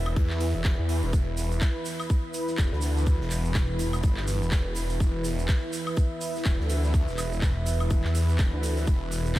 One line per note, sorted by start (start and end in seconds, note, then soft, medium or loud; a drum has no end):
0.00 0.15 E1 loud
0.00 9.39 E3 medium
0.00 9.39 E4 medium
0.00 9.39 B4 medium
0.00 1.12 E5 medium
0.06 closed hi-hat soft
0.06 high woodblock medium
0.16 0.52 E2 loud
0.16 kick loud
0.16 closed hi-hat medium
0.30 snare soft
0.30 clap soft
0.40 snare soft
0.40 closed hi-hat medium
0.40 open hi-hat loud
0.54 0.77 E1 medium
0.54 closed hi-hat soft
0.64 kick loud
0.64 snare loud
0.64 clap loud
0.64 closed hi-hat medium
0.79 1.01 E2 loud
0.89 snare soft
0.89 closed hi-hat medium
0.89 open hi-hat loud
1.03 1.12 E1 loud
1.03 snare soft
1.03 open hi-hat medium
1.13 1.60 E1 loud
1.13 4.99 B5 medium
1.13 kick loud
1.13 closed hi-hat medium
1.13 shaker medium
1.37 snare soft
1.37 closed hi-hat medium
1.37 open hi-hat loud
1.37 shaker medium
1.51 closed hi-hat soft
1.51 shaker soft
1.61 kick loud
1.61 snare loud
1.61 clap loud
1.61 closed hi-hat medium
1.61 shaker medium
1.85 open hi-hat loud
1.85 open hi-hat medium
1.85 shaker loud
2.00 high woodblock medium
2.00 shaker soft
2.10 kick loud
2.10 closed hi-hat medium
2.10 shaker soft
2.34 closed hi-hat medium
2.34 open hi-hat loud
2.34 shaker medium
2.47 snare medium
2.47 shaker soft
2.58 2.70 E1 loud
2.58 kick loud
2.58 snare loud
2.58 clap loud
2.58 closed hi-hat medium
2.58 shaker medium
2.72 3.18 D2 loud
2.72 snare soft
2.82 snare soft
2.82 closed hi-hat medium
2.82 open hi-hat loud
2.82 shaker medium
2.96 snare soft
2.96 shaker soft
3.06 kick loud
3.06 closed hi-hat medium
3.06 shaker medium
3.21 3.29 E1 loud
3.21 snare soft
3.30 3.67 E1 loud
3.30 clap soft
3.30 closed hi-hat medium
3.30 open hi-hat loud
3.30 shaker loud
3.45 shaker soft
3.55 kick loud
3.55 snare loud
3.55 clap loud
3.55 closed hi-hat medium
3.55 shaker soft
3.69 4.02 E1 loud
3.79 closed hi-hat medium
3.79 open hi-hat loud
3.79 shaker medium
3.93 closed hi-hat soft
3.93 high woodblock medium
3.93 shaker soft
4.03 4.39 G1 loud
4.03 kick loud
4.03 closed hi-hat medium
4.03 shaker medium
4.17 snare soft
4.17 clap soft
4.28 snare medium
4.28 closed hi-hat medium
4.28 open hi-hat loud
4.28 shaker medium
4.42 4.50 E1 loud
4.42 closed hi-hat soft
4.42 shaker soft
4.51 4.99 E1 loud
4.51 kick loud
4.51 snare loud
4.51 clap loud
4.51 closed hi-hat medium
4.51 shaker medium
4.75 snare soft
4.75 closed hi-hat medium
4.75 open hi-hat loud
4.75 shaker loud
4.90 snare soft
4.90 open hi-hat medium
4.90 shaker soft
5.00 5.47 E1 loud
5.00 8.86 E5 medium
5.00 kick loud
5.00 closed hi-hat medium
5.00 shaker medium
5.24 snare medium
5.24 closed hi-hat medium
5.24 open hi-hat loud
5.24 shaker medium
5.39 closed hi-hat soft
5.39 shaker soft
5.48 kick loud
5.48 snare loud
5.48 clap loud
5.48 closed hi-hat medium
5.48 shaker medium
5.73 open hi-hat loud
5.73 open hi-hat medium
5.73 shaker loud
5.87 high woodblock medium
5.87 shaker soft
5.97 kick loud
5.97 closed hi-hat medium
5.97 shaker medium
6.21 closed hi-hat medium
6.21 open hi-hat loud
6.21 shaker loud
6.35 snare medium
6.35 shaker soft
6.45 6.57 E1 medium
6.45 kick loud
6.45 snare loud
6.45 clap loud
6.45 closed hi-hat medium
6.45 shaker medium
6.59 7.06 D2 loud
6.59 snare soft
6.70 snare soft
6.70 closed hi-hat medium
6.70 open hi-hat loud
6.70 shaker medium
6.84 snare medium
6.84 shaker soft
6.94 kick loud
6.94 closed hi-hat medium
6.94 shaker soft
7.08 7.16 E1 loud
7.08 snare soft
7.08 shaker soft
7.18 7.54 E1 medium
7.18 clap soft
7.18 closed hi-hat medium
7.18 open hi-hat loud
7.18 high woodblock medium
7.18 shaker loud
7.32 shaker soft
7.42 kick loud
7.42 snare loud
7.42 clap loud
7.42 closed hi-hat medium
7.42 shaker medium
7.56 7.89 E1 medium
7.66 closed hi-hat medium
7.66 open hi-hat loud
7.66 shaker loud
7.80 closed hi-hat soft
7.80 high woodblock medium
7.80 shaker soft
7.90 8.02 E1 medium
7.90 kick loud
7.90 closed hi-hat medium
7.90 shaker medium
8.04 8.37 E2 loud
8.04 snare soft
8.04 clap soft
8.14 snare medium
8.14 closed hi-hat medium
8.14 open hi-hat loud
8.14 shaker medium
8.29 closed hi-hat soft
8.29 shaker soft
8.39 8.51 E1 loud
8.39 kick loud
8.39 snare loud
8.39 clap loud
8.39 closed hi-hat medium
8.39 shaker medium
8.53 8.86 D2 loud
8.63 snare soft
8.63 closed hi-hat medium
8.63 open hi-hat loud
8.63 shaker loud
8.77 snare soft
8.77 open hi-hat medium
8.77 shaker soft
8.87 9.34 E1 loud
8.87 9.39 B5 medium
8.87 kick loud
8.87 closed hi-hat medium
8.87 shaker medium
9.12 snare soft
9.12 closed hi-hat medium
9.12 open hi-hat loud
9.12 shaker loud
9.26 closed hi-hat soft
9.26 shaker soft
9.35 kick loud
9.35 snare loud
9.35 clap loud
9.35 shaker medium